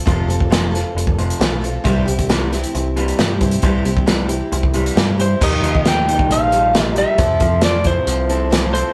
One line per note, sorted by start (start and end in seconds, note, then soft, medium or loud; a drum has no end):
0.05 0.25 F1 medium
0.05 0.27 F2 medium
0.05 0.27 C3 medium
0.05 0.28 F3 medium
0.05 0.27 F3 medium
0.05 0.28 C4 medium
0.05 0.27 F4 medium
0.05 0.27 A4 medium
0.05 kick medium
0.05 closed hi-hat medium
0.27 0.83 F1 medium
0.27 0.49 F2 medium
0.27 0.49 C3 medium
0.27 0.49 C4 soft
0.27 0.49 F4 soft
0.27 0.50 A4 soft
0.27 closed hi-hat soft
0.40 kick medium
0.50 0.71 F2 medium
0.50 0.72 C3 medium
0.50 0.72 F3 medium
0.50 0.72 C4 soft
0.50 0.71 F4 medium
0.50 0.70 A4 medium
0.50 snare loud
0.50 closed hi-hat medium
0.71 0.93 F2 medium
0.71 0.94 C3 medium
0.71 1.39 C4 soft
0.71 1.38 F4 soft
0.71 1.39 A4 medium
0.75 snare soft
0.75 closed hi-hat medium
0.95 1.32 F1 medium
0.95 1.16 F2 medium
0.95 1.16 C3 medium
0.95 closed hi-hat medium
1.07 kick medium
1.19 1.39 F2 medium
1.19 1.39 C3 medium
1.19 1.39 F3 medium
1.19 closed hi-hat soft
1.30 closed hi-hat medium
1.39 1.77 B1 medium
1.39 1.60 F2 medium
1.39 1.60 C3 medium
1.39 1.62 F3 medium
1.39 1.61 C4 medium
1.39 1.60 F4 medium
1.39 1.60 A4 medium
1.39 snare loud
1.39 closed hi-hat medium
1.61 1.83 F2 medium
1.61 1.83 C3 medium
1.61 1.84 C4 soft
1.61 1.84 F4 medium
1.61 1.84 A4 medium
1.61 closed hi-hat medium
1.84 2.03 C2 medium
1.84 2.06 C3 medium
1.84 2.05 C3 medium
1.84 2.06 E3 medium
1.84 2.07 G3 medium
1.84 2.06 G3 medium
1.84 2.07 C4 medium
1.84 2.06 E4 medium
1.84 2.04 G4 medium
1.84 kick medium
1.84 closed hi-hat medium
2.06 2.64 C2 medium
2.06 2.27 C3 medium
2.06 2.27 E3 medium
2.06 2.28 C4 soft
2.06 2.29 E4 soft
2.06 2.28 G4 medium
2.06 closed hi-hat medium
2.19 kick medium
2.19 closed hi-hat medium
2.29 2.50 C3 medium
2.29 2.50 E3 medium
2.29 2.51 G3 medium
2.29 2.52 C4 medium
2.29 2.52 E4 medium
2.29 2.51 G4 medium
2.29 snare loud
2.29 closed hi-hat medium
2.52 2.72 C3 medium
2.52 2.72 E3 medium
2.52 3.17 C4 soft
2.52 3.18 E4 soft
2.52 3.20 G4 soft
2.52 snare soft
2.52 closed hi-hat soft
2.64 closed hi-hat medium
2.75 3.12 C2 medium
2.75 2.94 C3 medium
2.75 2.95 E3 medium
2.75 closed hi-hat medium
2.96 3.17 C3 medium
2.96 3.17 E3 medium
2.96 3.18 G3 medium
2.96 closed hi-hat soft
3.08 closed hi-hat medium
3.19 3.56 G2 medium
3.19 3.39 C3 medium
3.19 3.39 E3 medium
3.19 3.41 G3 medium
3.19 3.41 C4 medium
3.19 3.41 E4 medium
3.19 3.39 G4 medium
3.19 snare loud
3.19 closed hi-hat soft
3.41 3.61 C3 medium
3.41 3.61 E3 medium
3.41 3.63 C4 soft
3.41 3.63 E4 soft
3.41 3.63 G4 medium
3.41 kick medium
3.41 closed hi-hat soft
3.51 closed hi-hat medium
3.62 3.81 C2 medium
3.62 3.85 C3 medium
3.62 3.84 C3 medium
3.62 3.84 E3 medium
3.62 3.86 G3 medium
3.62 3.84 G3 loud
3.62 3.86 C4 medium
3.62 3.85 E4 medium
3.62 3.83 G4 medium
3.62 kick medium
3.62 closed hi-hat soft
3.85 4.41 C2 medium
3.85 4.05 C3 medium
3.85 4.06 E3 medium
3.85 4.05 C4 medium
3.85 4.05 E4 soft
3.85 4.07 G4 medium
3.85 closed hi-hat medium
3.97 kick medium
4.06 4.28 C3 medium
4.06 4.28 E3 medium
4.06 4.29 G3 medium
4.06 4.28 C4 medium
4.06 4.28 E4 medium
4.06 4.27 G4 medium
4.06 snare medium
4.06 closed hi-hat medium
4.28 4.50 C3 medium
4.28 4.50 E3 medium
4.28 4.94 C4 soft
4.28 4.94 E4 soft
4.28 4.95 G4 soft
4.28 closed hi-hat medium
4.52 4.89 C2 medium
4.52 4.72 C3 medium
4.52 4.72 E3 medium
4.52 closed hi-hat medium
4.63 kick medium
4.74 4.95 C3 medium
4.74 4.96 E3 medium
4.74 4.96 G3 medium
4.74 closed hi-hat medium
4.86 closed hi-hat medium
4.93 5.34 G2 medium
4.93 5.17 C3 medium
4.93 5.17 E3 medium
4.93 5.17 G3 medium
4.93 5.18 C4 medium
4.93 5.18 E4 medium
4.93 5.16 G4 medium
4.93 closed hi-hat soft
4.97 snare medium
5.17 5.39 C3 medium
5.17 5.39 E3 medium
5.17 5.41 C4 soft
5.17 5.41 E4 soft
5.17 5.41 G4 medium
5.17 5.43 C5 medium
5.17 closed hi-hat medium
5.41 5.60 D#2 medium
5.41 5.63 D#3 medium
5.41 6.53 D#3 medium
5.41 5.64 F3 medium
5.41 5.63 A#3 medium
5.41 5.62 D#4 medium
5.41 5.61 G4 medium
5.41 5.88 D#5 medium
5.41 kick medium
5.41 crash medium
5.62 6.18 D#2 medium
5.62 6.29 F3 medium
5.62 5.84 A#3 soft
5.62 5.86 D#4 soft
5.62 5.85 G4 soft
5.62 closed hi-hat medium
5.75 kick medium
5.85 6.53 F3 soft
5.85 6.51 G3 medium
5.85 6.50 A#3 medium
5.85 6.50 D#4 medium
5.85 6.49 G4 soft
5.85 6.33 G5 medium
5.85 snare medium
5.85 closed hi-hat medium
6.08 7.20 D#4 medium
6.08 closed hi-hat soft
6.19 kick medium
6.30 7.04 A#1 medium
6.30 6.74 F3 medium
6.30 6.83 F5 medium
6.30 closed hi-hat medium
6.50 6.97 G3 medium
6.50 6.73 A#3 soft
6.50 6.74 D#4 soft
6.50 6.74 G4 medium
6.50 closed hi-hat soft
6.74 6.97 F3 medium
6.74 7.18 F3 medium
6.74 6.97 A#3 medium
6.74 6.95 D#4 soft
6.74 6.94 G4 medium
6.74 snare medium
6.74 closed hi-hat medium
6.83 6.98 D#5 medium
6.95 7.20 G3 medium
6.95 7.18 A#3 soft
6.95 7.19 D#4 soft
6.95 7.19 G4 medium
6.95 7.64 E5 medium
6.95 closed hi-hat soft
7.18 7.38 F2 medium
7.18 7.41 F3 medium
7.18 7.40 C4 medium
7.18 7.40 E4 medium
7.18 7.39 A4 medium
7.18 kick medium
7.18 closed hi-hat medium
7.40 7.97 F2 medium
7.40 8.06 F3 medium
7.40 7.62 C4 soft
7.40 7.63 E4 soft
7.40 7.63 A4 medium
7.40 kick medium
7.40 closed hi-hat medium
7.61 8.31 F3 medium
7.61 8.29 C4 medium
7.61 8.30 C4 medium
7.61 8.28 E4 medium
7.61 7.85 D5 medium
7.61 snare loud
7.61 closed hi-hat medium
7.66 8.28 A4 medium
7.84 8.93 E4 medium
7.84 8.72 C5 medium
7.84 kick medium
7.84 closed hi-hat medium
8.07 8.82 C2 medium
8.07 8.51 F3 medium
8.07 closed hi-hat medium
8.29 8.75 C4 medium
8.29 8.50 C4 soft
8.29 8.50 E4 soft
8.29 8.51 A4 medium
8.29 closed hi-hat soft
8.50 8.74 F3 medium
8.50 8.93 F3 medium
8.50 8.73 C4 medium
8.50 8.72 E4 medium
8.50 8.70 A4 medium
8.50 snare medium
8.50 closed hi-hat medium
8.71 8.93 C4 soft
8.71 8.93 C4 medium
8.71 8.93 E4 soft
8.71 8.93 A4 medium
8.71 8.93 C5 medium
8.71 closed hi-hat medium